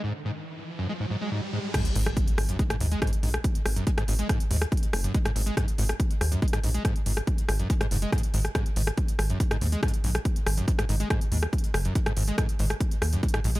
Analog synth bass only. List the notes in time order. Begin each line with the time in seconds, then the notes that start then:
1.95 G#1
2.38 G#1
2.81 D#2
3.23 A#1
3.66 G#1
4.08 G#1
4.51 D#2
4.93 F#1
5.36 G#1
5.79 G#1
6.21 D#2
6.64 A#1
7.06 G#1
7.49 G#1
7.91 F#1
8.34 G#1
8.76 G#1
9.19 G#1
9.61 D#2
10.04 A#1
10.47 G#1
10.89 G#1
11.32 D#2
11.74 F#1
12.17 G#1
12.59 G#1
13.02 D#2
13.44 A#1